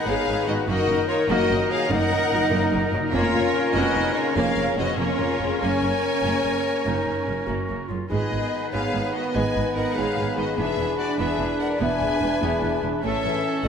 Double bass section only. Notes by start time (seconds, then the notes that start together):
0.07 G#1
0.28 G#1
0.48 G#1
0.68 F#1
0.89 F#1
1.29 F#1
1.50 F#1
1.92 F#1
2.12 F#1
2.33 F#1
2.53 F#1
2.73 F#1
2.95 F#1
3.15 F1
3.35 F1
3.75 F1
3.96 F1
4.36 F1
4.57 F1
4.78 F1
4.98 F1
5.19 F1
5.40 F1
5.61 F#1
5.82 F#1
6.23 F#1
6.44 F#1
6.86 F#1
7.07 F#1
7.27 F#1
7.48 F#1
7.69 F#1
7.90 F#1
8.11 G#1
8.31 G#1
8.74 G#1
8.94 G#1
9.36 G#1
9.56 G#1
9.77 G#1
9.98 G#1
10.18 G#1
10.38 G#1
10.58 E1
10.79 E1
11.19 E1
11.40 E1
11.80 E1
12.01 E1
12.22 E1
12.42 E1
12.64 E1
12.83 E1
13.04 A1
13.24 A1
13.64 A1